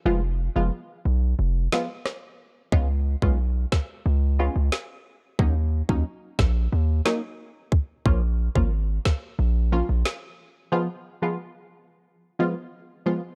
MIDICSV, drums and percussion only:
0, 0, Header, 1, 2, 480
1, 0, Start_track
1, 0, Tempo, 666667
1, 42, Time_signature, 4, 2, 24, 8
1, 9612, End_track
2, 0, Start_track
2, 0, Title_t, "Drums"
2, 1241, Note_on_c, 9, 38, 103
2, 1313, Note_off_c, 9, 38, 0
2, 1480, Note_on_c, 9, 37, 86
2, 1480, Note_on_c, 9, 38, 66
2, 1552, Note_off_c, 9, 37, 0
2, 1552, Note_off_c, 9, 38, 0
2, 1961, Note_on_c, 9, 36, 108
2, 2033, Note_off_c, 9, 36, 0
2, 2320, Note_on_c, 9, 36, 87
2, 2392, Note_off_c, 9, 36, 0
2, 2680, Note_on_c, 9, 36, 91
2, 2681, Note_on_c, 9, 38, 109
2, 2752, Note_off_c, 9, 36, 0
2, 2753, Note_off_c, 9, 38, 0
2, 3400, Note_on_c, 9, 38, 109
2, 3472, Note_off_c, 9, 38, 0
2, 3881, Note_on_c, 9, 36, 108
2, 3953, Note_off_c, 9, 36, 0
2, 4241, Note_on_c, 9, 36, 92
2, 4313, Note_off_c, 9, 36, 0
2, 4600, Note_on_c, 9, 36, 90
2, 4601, Note_on_c, 9, 38, 112
2, 4672, Note_off_c, 9, 36, 0
2, 4673, Note_off_c, 9, 38, 0
2, 5080, Note_on_c, 9, 38, 110
2, 5152, Note_off_c, 9, 38, 0
2, 5558, Note_on_c, 9, 36, 92
2, 5630, Note_off_c, 9, 36, 0
2, 5801, Note_on_c, 9, 36, 108
2, 5873, Note_off_c, 9, 36, 0
2, 6160, Note_on_c, 9, 36, 87
2, 6232, Note_off_c, 9, 36, 0
2, 6519, Note_on_c, 9, 36, 90
2, 6520, Note_on_c, 9, 38, 113
2, 6591, Note_off_c, 9, 36, 0
2, 6592, Note_off_c, 9, 38, 0
2, 7239, Note_on_c, 9, 38, 110
2, 7311, Note_off_c, 9, 38, 0
2, 9612, End_track
0, 0, End_of_file